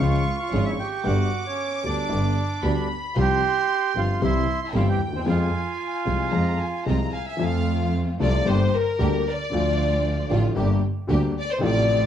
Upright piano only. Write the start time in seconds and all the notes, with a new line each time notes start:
0.00 C#2 C#3 F3 G#3 C#4 G#4
0.53 G#1 G#2 F3 G#3 C#4 G#4
1.04 G1 G2 D3 G3 B3 G4
1.83 D2 D3 G3 B3 G4
2.09 G1 G2 D3 G3 B3 G4
2.63 D2 D3 G3 B3 G4
3.16 C2 C3 F3 G3 C4 G4
3.95 G1 G2 F3 G3 C4 G4
4.21 C2 C3 E3 G3 C4 G4
4.74 G1 G2 E3 G3 C4 G4
5.07 D2
5.13 D#2
5.19 E2
5.26 F2 F3 G#3 C4 G#4
6.05 C2 C3 F3 G#3 C4 G#4
6.31 F2 F3 G#3 C4 G#4
6.86 C2 C3 F3 G#3 C4 G#4
7.38 F2 F3 A3 C4 A4
8.20 C2 C3 F3 A3 C4 A4
8.45 G1 G2 D3 G3 A#3 G4
8.99 D2 D3 G3 A#3 G4
9.50 D2 D3 F3 A3
9.54 F4
10.30 A1 A2 D3 F3 A3 F4
10.55 G1 G2 D3 G3 A#3 G4
11.07 D2 D3 G3 A#3 G4
11.58 A1 A2 C3 F3 A3
11.63 F4